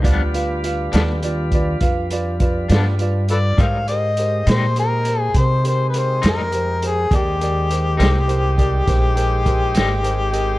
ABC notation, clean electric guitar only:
X:1
M:12/8
L:1/8
Q:3/8=68
K:Ablyd
V:1 name="Clean electric guitar"
[G,,F,=B,D] z2 [G,,F,B,D] z4 z [G,,F,B,D] z2 | [A,,G,CE] z2 [A,,G,CE] z4 z [A,,G,CE] z2 | z3 [A,,G,CE] z4 z [A,,G,CE] z2 |]